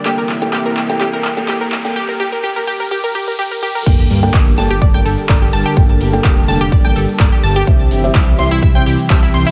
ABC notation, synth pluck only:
X:1
M:4/4
L:1/16
Q:1/4=126
K:Gdor
V:1 name="Synth pluck"
G B z2 G B z2 G B z2 G B z2 | G B G B G B G B G B G B G B G B | z4 [Gg] z [aa'] [Gg] [dd'] [gg'] [Aa] z [dd'] [Gg] [aa'] [Gg] | z4 [Gg] z [aa'] [Gg] [dd'] [gg'] [Aa] z [dd'] [Gg] [aa'] [Gg] |
z4 [Ee] z c' [Ee] [ee'] [gg'] [Gg] z [ee'] [Ee] c' [Ee] |]